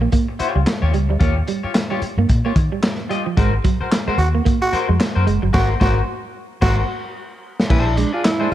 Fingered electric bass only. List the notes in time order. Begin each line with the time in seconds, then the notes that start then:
0.40 muted fingered electric bass stroke
0.56 C#2
0.82 D#2
0.93 C#2
1.09 D2
1.21 D#2
1.64 muted fingered electric bass stroke
2.02 muted fingered electric bass stroke
2.18 G2
2.30 A#2
2.56 D#3
3.37 G#1
3.81 muted fingered electric bass stroke
4.08 muted fingered electric bass stroke
4.18 D#2
4.73 muted fingered electric bass stroke
4.89 F2
5.16 F#2
5.27 F#1
5.43 G1
5.54 G#1
5.81 G#1
6.62 G#1
7.70 A#1